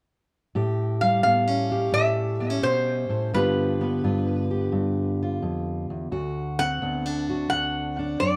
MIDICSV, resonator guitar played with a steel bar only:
0, 0, Header, 1, 2, 480
1, 0, Start_track
1, 0, Tempo, 695249
1, 377, Time_signature, 4, 2, 24, 8
1, 5774, End_track
2, 0, Start_track
2, 0, Title_t, "Resonator guitar played with a steel bar"
2, 0, Program_c, 0, 25
2, 698, Note_on_c, 0, 77, 78
2, 843, Note_off_c, 0, 77, 0
2, 851, Note_on_c, 0, 77, 80
2, 1337, Note_on_c, 0, 76, 89
2, 1348, Note_off_c, 0, 77, 0
2, 1789, Note_off_c, 0, 76, 0
2, 1818, Note_on_c, 0, 72, 76
2, 2306, Note_off_c, 0, 72, 0
2, 2309, Note_on_c, 0, 71, 68
2, 3235, Note_off_c, 0, 71, 0
2, 4549, Note_on_c, 0, 78, 96
2, 5168, Note_off_c, 0, 78, 0
2, 5176, Note_on_c, 0, 78, 91
2, 5661, Note_on_c, 0, 74, 82
2, 5673, Note_off_c, 0, 78, 0
2, 5774, Note_off_c, 0, 74, 0
2, 5774, End_track
0, 0, End_of_file